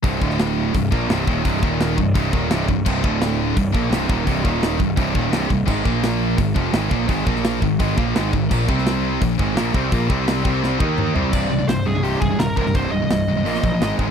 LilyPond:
<<
  \new Staff \with { instrumentName = "Lead electric guitar" } { \time 4/4 \key c \minor \tempo 4 = 170 r1 | r1 | r1 | r1 |
r1 | r1 | r1 | r1 |
d''4 c''8 aes'8 g'8 aes'8 bes'8 bes'8 | c''8 ees''2. r8 | }
  \new Staff \with { instrumentName = "Distorted electric guitar" } { \clef bass \time 4/4 \key c \minor <c, g, c>8 <d, a, d>4. <c, g,>8 <bes, f bes>8 <c, g, c>8 <ees, bes, ees>8 | <c, g, c>8 <ees, bes, ees>4 <c, g,>8 <c, g, c>8 <ees, bes, ees>8 <c, g, c>8 <c, g,>8 | <c, g, c>8 <d, a, d>4. <c, g,>8 <bes, f bes>8 <c, g, c>8 <ees, bes, ees>8 | <c, g, c>8 <ees, bes, ees>4 <c, g,>8 <c, g, c>8 <ees, bes, ees>8 <c, g, c>8 <c, g,>8 |
<aes, ees aes>8 <bes, f bes>4. <aes, ees>8 <f, c f>8 <aes, ees aes>8 <bes, f bes>8 | <aes, ees aes>8 <bes, f bes>4 <aes, ees>8 <aes, ees aes>8 <bes, f bes>8 <aes, ees aes>8 <aes, ees>8 | <bes, f bes>8 <c g c'>4. <bes, f>8 <aes, ees aes>8 <bes, f bes>8 <c g c'>8 | <bes, f bes>8 <c g c'>4 <c g c'>4 <ees bes ees'>4 <c g c'>8 |
<c, g, c>8 <c, g,>16 <c, g,>16 <c, g,>8 <c, g,>16 <c, g,>16 <c, g, c>8 <c, g,>16 <c, g,>16 <c, g,>8 <c, g, c>16 <c, g,>16 | <c, g, c>8 <c, g,>16 <c, g,>16 <c, g,>8 <c, g,>16 <c, g,>16 <bes, f bes>8 <bes, f>16 <bes, f>16 <aes, ees aes>8 <aes, ees aes>16 r16 | }
  \new Staff \with { instrumentName = "Distorted electric guitar" } { \clef bass \time 4/4 \key c \minor <c, g, c>8 <d, a, d>4. <c, g,>8 <bes, f bes>8 <c, g, c>8 <ees, bes, ees>8 | <c, g, c>8 <ees, bes, ees>4 <c, g,>8 <c, g, c>8 <ees, bes, ees>8 <c, g, c>8 <c, g,>8 | <c, g, c>8 <d, a, d>4. <c, g,>8 <bes, f bes>8 <c, g, c>8 <ees, bes, ees>8 | <c, g, c>8 <ees, bes, ees>4 <c, g,>8 <c, g, c>8 <ees, bes, ees>8 <c, g, c>8 <c, g,>8 |
<aes, ees aes>8 <bes, f bes>4. <aes, ees>8 <f, c f>8 <aes, ees aes>8 <bes, f bes>8 | <aes, ees aes>8 <bes, f bes>4 <aes, ees>8 <aes, ees aes>8 <bes, f bes>8 <aes, ees aes>8 <aes, ees>8 | <bes, f bes>8 <c g c'>4. <bes, f>8 <aes, ees aes>8 <bes, f bes>8 <c g c'>8 | <bes, f bes>8 <c g c'>4 <c g c'>4 <ees bes ees'>4 <c g c'>8 |
<c, g, c>8 <c, g,>16 <c, g,>16 <c, g,>8 <c, g,>16 <c, g,>16 <c, g, c>8 <c, g,>16 <c, g,>16 <c, g,>8 <c, g, c>16 <c, g,>16 | <c, g, c>8 <c, g,>16 <c, g,>16 <c, g,>8 <c, g,>16 <c, g,>16 <bes, f bes>8 <bes, f>16 <bes, f>16 <aes, ees aes>8 <aes, ees aes>16 <aes, ees>16 | }
  \new Staff \with { instrumentName = "Picked electric bass" } { \clef bass \time 4/4 \key c \minor c,,8 d,,4. c,,8 bes,,8 c,,8 ees,,8 | c,,8 ees,,4 c,,8 c,,8 ees,,8 c,,8 c,,8 | c,,8 d,,4. c,,8 bes,,8 c,,8 ees,,8 | c,,8 ees,,4 c,,8 c,,8 ees,,8 c,,8 c,,8 |
aes,,8 bes,,4. aes,,8 f,,8 aes,,8 bes,,8 | aes,,8 bes,,4 aes,,8 aes,,8 bes,,8 aes,,8 aes,,8 | bes,,8 c,4. bes,,8 aes,,8 bes,,8 c,8 | bes,,8 c,4 c,4 ees,4 c,8 |
c,,8 c,,8 c,,8 c,,8 c,,8 c,,8 ees,,8 c,,8 | c,,8 c,,8 c,,8 c,,8 bes,,8 bes,,8 aes,,8 aes,,8 | }
  \new DrumStaff \with { instrumentName = "Drums" } \drummode { \time 4/4 <hho bd>8 bd16 sn16 <hho sn>4 <hho bd>8 bd8 <hho sn>8 bd8 | <hho bd>8 bd8 <hho sn>8 bd8 <hho bd>8 bd8 <hho sn>8 bd8 | <cymc bd>8 bd8 <hho sn>4 <hho bd>8 bd8 <hho sn>8 bd8 | <hho bd>8 bd8 <hho sn>8 bd8 <hho bd>8 bd8 <hho sn>8 bd8 |
<cymc bd>8 bd8 <hho sn>4 <hho bd>8 bd8 <hho sn>8 bd8 | <hho bd>8 bd16 sn16 <hho sn>8 bd8 <hho bd>8 bd8 <hho sn>8 bd8 | <cymc bd>8 bd16 sn16 <hho sn>4 <hho bd>8 bd8 <hho sn>8 bd8 | <hho bd>8 bd8 <hho sn>8 bd8 sn8 bd8 toml8 tomfh8 |
<cymc bd>4 <hho sn>4 hho8 bd8 <hho sn>8 bd16 sn16 | <hho bd>4 <hho sn>4 hho16 sn16 bd8 <hho sn>8 bd8 | }
>>